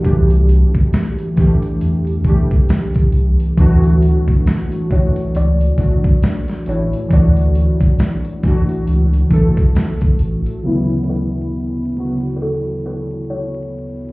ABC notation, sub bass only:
X:1
M:4/4
L:1/16
Q:"Swing 16ths" 1/4=68
K:D
V:1 name="Sub bass" clef=bass
=C,,3 z4 z E,,2 z4 C,, z | D,,3 z4 z C,,2 z4 A,,, z | D,,3 z4 z C,,2 z4 A,,, z | z16 |]